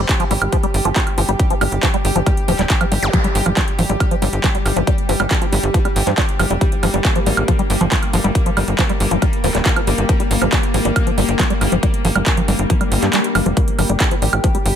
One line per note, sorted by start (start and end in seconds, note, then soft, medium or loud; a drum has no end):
0.00 13.56 G3 medium
0.00 14.76 D4 medium
0.00 6.63 G4 medium
0.00 14.76 G4 medium
0.00 14.76 G5 medium
0.09 kick loud
0.09 clap loud
0.09 closed hi-hat medium
0.20 0.24 F3 loud
0.20 closed hi-hat medium
0.31 0.38 G#1 medium
0.31 0.34 G3 loud
0.31 open hi-hat loud
0.42 0.49 G#1 medium
0.42 closed hi-hat medium
0.42 high woodblock medium
0.53 0.57 F3 medium
0.53 kick loud
0.53 closed hi-hat loud
0.63 0.66 G3 loud
0.63 closed hi-hat medium
0.74 0.81 G1 loud
0.74 open hi-hat loud
0.85 0.92 G1 medium
0.85 0.90 F3 loud
0.85 closed hi-hat medium
0.96 0.99 G3 loud
0.96 kick loud
0.96 clap loud
0.96 closed hi-hat medium
1.07 closed hi-hat medium
1.07 high woodblock soft
1.18 1.25 G1 medium
1.18 1.22 F3 loud
1.18 open hi-hat loud
1.29 1.36 G1 medium
1.29 1.31 G3 loud
1.29 closed hi-hat medium
1.39 kick loud
1.39 closed hi-hat medium
1.50 1.55 F3 loud
1.50 closed hi-hat medium
1.61 1.68 G1 medium
1.61 1.64 G3 loud
1.61 open hi-hat loud
1.61 high woodblock medium
1.72 1.79 G1 medium
1.72 closed hi-hat medium
1.83 1.88 F3 loud
1.83 kick loud
1.83 clap loud
1.83 closed hi-hat medium
1.94 1.97 G3 loud
1.94 closed hi-hat medium
2.05 2.12 G1 medium
2.05 open hi-hat loud
2.16 2.23 G1 medium
2.16 2.20 F3 loud
2.16 closed hi-hat medium
2.26 2.29 G3 loud
2.26 kick loud
2.26 closed hi-hat medium
2.26 high woodblock soft
2.37 closed hi-hat medium
2.48 2.55 D1 loud
2.48 2.53 F3 loud
2.48 open hi-hat loud
2.59 2.66 D1 medium
2.59 2.62 G3 loud
2.59 clap soft
2.59 closed hi-hat medium
2.70 kick loud
2.70 clap loud
2.70 closed hi-hat medium
2.81 2.85 F3 loud
2.81 closed hi-hat medium
2.81 high woodblock medium
2.92 2.99 G1 loud
2.92 2.94 G3 loud
2.92 open hi-hat loud
3.03 3.10 G1 medium
3.03 closed hi-hat medium
3.03 zap medium
3.13 3.18 F3 loud
3.13 kick loud
3.13 closed hi-hat medium
3.24 3.27 G3 loud
3.24 closed hi-hat medium
3.35 3.42 G1 medium
3.35 open hi-hat loud
3.46 3.53 G1 medium
3.46 3.51 F3 loud
3.46 closed hi-hat medium
3.46 high woodblock soft
3.57 3.60 G3 loud
3.57 kick loud
3.57 clap loud
3.57 closed hi-hat medium
3.68 closed hi-hat medium
3.79 3.86 G#1 medium
3.79 3.83 F3 loud
3.79 open hi-hat loud
3.89 3.97 G#1 medium
3.89 3.92 G3 loud
3.89 closed hi-hat medium
4.00 kick loud
4.00 closed hi-hat medium
4.00 high woodblock medium
4.11 4.16 F3 loud
4.11 closed hi-hat medium
4.22 4.29 G1 loud
4.22 4.25 G3 loud
4.22 open hi-hat loud
4.33 4.40 G1 medium
4.33 closed hi-hat medium
4.44 4.48 F3 loud
4.44 kick loud
4.44 clap loud
4.44 closed hi-hat medium
4.55 4.57 G3 loud
4.55 closed hi-hat medium
4.66 4.73 G1 medium
4.66 open hi-hat loud
4.66 high woodblock soft
4.76 4.84 G1 medium
4.76 4.81 F3 loud
4.76 closed hi-hat soft
4.87 4.90 G3 loud
4.87 kick loud
4.87 closed hi-hat medium
4.98 closed hi-hat medium
5.09 5.16 G1 loud
5.09 5.14 F3 loud
5.09 open hi-hat loud
5.20 5.27 G1 medium
5.20 5.23 G3 loud
5.20 closed hi-hat soft
5.20 high woodblock medium
5.31 kick loud
5.31 clap loud
5.31 closed hi-hat medium
5.42 5.46 F3 loud
5.42 closed hi-hat soft
5.52 5.60 G1 medium
5.52 5.55 G3 loud
5.52 open hi-hat loud
5.63 5.70 G1 medium
5.63 closed hi-hat soft
5.74 5.79 F3 loud
5.74 kick loud
5.74 closed hi-hat medium
5.85 5.88 G3 loud
5.85 closed hi-hat medium
5.85 high woodblock soft
5.96 6.03 G1 loud
5.96 open hi-hat loud
6.07 6.14 G2 medium
6.07 6.11 F3 loud
6.07 clap soft
6.07 closed hi-hat soft
6.18 6.20 G3 loud
6.18 kick loud
6.18 clap loud
6.18 closed hi-hat medium
6.29 closed hi-hat soft
6.39 6.47 G1 medium
6.39 6.44 F3 loud
6.39 open hi-hat loud
6.39 high woodblock medium
6.50 6.57 F1 medium
6.50 6.53 G3 loud
6.50 closed hi-hat soft
6.61 6.64 G3 loud
6.61 13.59 A#3 medium
6.61 kick loud
6.61 closed hi-hat medium
6.72 closed hi-hat soft
6.83 6.90 G1 medium
6.83 6.88 F3 loud
6.83 open hi-hat loud
6.83 high woodblock soft
6.94 7.01 G1 medium
6.94 6.97 G3 loud
6.94 closed hi-hat soft
7.05 kick loud
7.05 clap loud
7.05 closed hi-hat medium
7.16 7.20 F3 loud
7.16 closed hi-hat medium
7.26 7.34 G#1 medium
7.26 7.29 G3 loud
7.26 open hi-hat loud
7.37 7.44 G#1 medium
7.37 closed hi-hat medium
7.37 high woodblock medium
7.48 7.53 F3 loud
7.48 kick loud
7.48 closed hi-hat medium
7.59 7.62 G3 loud
7.59 closed hi-hat soft
7.70 7.77 G1 medium
7.70 open hi-hat loud
7.81 7.88 G1 medium
7.81 7.85 F3 loud
7.81 closed hi-hat soft
7.92 7.94 G3 loud
7.92 kick loud
7.92 clap loud
7.92 closed hi-hat medium
8.03 closed hi-hat medium
8.03 high woodblock soft
8.13 8.20 G1 medium
8.13 8.18 F3 loud
8.13 open hi-hat loud
8.24 8.31 G1 medium
8.24 8.27 G3 loud
8.24 closed hi-hat soft
8.35 kick loud
8.35 closed hi-hat medium
8.46 8.51 F3 loud
8.46 closed hi-hat medium
8.57 8.64 G1 medium
8.57 8.60 G3 loud
8.57 open hi-hat loud
8.57 high woodblock medium
8.68 8.75 G1 medium
8.68 closed hi-hat medium
8.79 8.83 F3 loud
8.79 kick loud
8.79 clap loud
8.79 closed hi-hat medium
8.89 8.92 G3 loud
8.89 closed hi-hat medium
9.00 9.07 G1 medium
9.00 open hi-hat loud
9.11 9.18 G1 medium
9.11 9.16 F3 loud
9.11 closed hi-hat medium
9.22 9.25 G3 loud
9.22 kick loud
9.22 closed hi-hat medium
9.22 high woodblock soft
9.33 closed hi-hat medium
9.44 9.51 D1 loud
9.44 9.48 F3 loud
9.44 open hi-hat loud
9.55 9.62 D1 medium
9.55 9.57 G3 loud
9.55 clap soft
9.55 closed hi-hat medium
9.66 kick loud
9.66 clap loud
9.66 closed hi-hat medium
9.76 9.81 F3 loud
9.76 closed hi-hat medium
9.76 high woodblock medium
9.87 9.94 G1 medium
9.87 9.90 G3 loud
9.87 open hi-hat loud
9.98 10.05 G1 medium
9.98 closed hi-hat medium
10.09 10.14 F3 loud
10.09 kick loud
10.09 closed hi-hat loud
10.20 10.23 G3 loud
10.20 closed hi-hat medium
10.31 10.38 G1 medium
10.31 open hi-hat loud
10.42 10.49 G1 medium
10.42 10.46 F3 loud
10.42 closed hi-hat medium
10.42 high woodblock soft
10.52 10.55 G3 loud
10.52 kick loud
10.52 clap loud
10.52 closed hi-hat medium
10.63 closed hi-hat medium
10.74 10.81 G#1 medium
10.74 10.79 F3 loud
10.74 open hi-hat loud
10.85 10.92 G#1 medium
10.85 10.88 G3 loud
10.85 closed hi-hat medium
10.96 kick loud
10.96 closed hi-hat loud
10.96 high woodblock medium
11.07 11.11 F3 loud
11.07 closed hi-hat medium
11.18 11.25 G1 loud
11.18 11.20 G3 loud
11.18 open hi-hat loud
11.29 11.36 G1 medium
11.29 closed hi-hat medium
11.39 11.44 F3 loud
11.39 kick loud
11.39 clap loud
11.39 closed hi-hat loud
11.50 11.53 G3 loud
11.50 closed hi-hat medium
11.61 11.68 G1 loud
11.61 open hi-hat loud
11.61 high woodblock soft
11.72 11.79 G1 medium
11.72 11.77 F3 loud
11.72 closed hi-hat medium
11.83 11.86 G3 loud
11.83 kick loud
11.83 closed hi-hat loud
11.94 closed hi-hat medium
12.05 12.12 G1 loud
12.05 12.09 F3 loud
12.05 open hi-hat loud
12.16 12.23 G1 medium
12.16 12.18 G3 loud
12.16 closed hi-hat medium
12.16 high woodblock medium
12.26 kick loud
12.26 clap loud
12.26 closed hi-hat medium
12.37 12.42 F3 loud
12.37 closed hi-hat medium
12.48 12.55 G1 medium
12.48 12.51 G3 loud
12.48 open hi-hat loud
12.59 12.66 G1 medium
12.59 closed hi-hat medium
12.70 12.74 F3 loud
12.70 kick loud
12.70 closed hi-hat loud
12.70 swell medium
12.81 12.84 G3 loud
12.81 closed hi-hat medium
12.81 high woodblock soft
12.92 12.99 G1 loud
12.92 open hi-hat loud
13.03 13.10 G2 medium
13.03 13.07 G4 medium
13.03 clap soft
13.03 closed hi-hat medium
13.13 13.20 G3 medium
13.13 clap loud
13.13 closed hi-hat loud
13.24 closed hi-hat medium
13.35 13.42 G1 medium
13.35 13.40 F3 medium
13.35 open hi-hat loud
13.35 high woodblock medium
13.46 13.53 F1 medium
13.46 13.49 F3 loud
13.46 closed hi-hat medium
13.57 14.76 G3 medium
13.57 13.60 G3 loud
13.57 14.76 G4 medium
13.57 kick loud
13.57 closed hi-hat loud
13.68 closed hi-hat medium
13.79 13.86 G1 medium
13.79 13.83 F3 loud
13.79 open hi-hat loud
13.79 high woodblock soft
13.89 13.97 G1 medium
13.89 13.92 G3 loud
13.89 closed hi-hat medium
14.00 kick loud
14.00 clap loud
14.00 closed hi-hat loud
14.11 14.16 F3 loud
14.11 closed hi-hat medium
14.22 14.29 G#1 medium
14.22 14.25 G3 loud
14.22 open hi-hat loud
14.33 14.40 G#1 medium
14.33 closed hi-hat medium
14.33 high woodblock medium
14.44 14.48 F3 loud
14.44 kick loud
14.44 closed hi-hat loud
14.55 14.57 G3 loud
14.55 closed hi-hat medium
14.66 14.73 G1 medium
14.66 open hi-hat loud